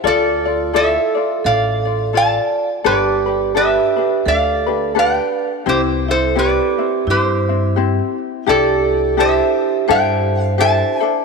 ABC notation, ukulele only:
X:1
M:4/4
L:1/8
Q:"Swing" 1/4=85
K:C
V:1 name="Ukulele"
[FAd] [Fd] [EFAd] [Fd]2 [Fd] [FAd]2 | [DGAB] [DGB] [DGAB] [DGB]2 [DGB] [DGAB]2 | [CEG] [CE] [CEGB] [CE]2 [CE] [CEG]2 | [DEGA]2 [DEGA]2 [DEGA]2 [DEGA] [DEA] |]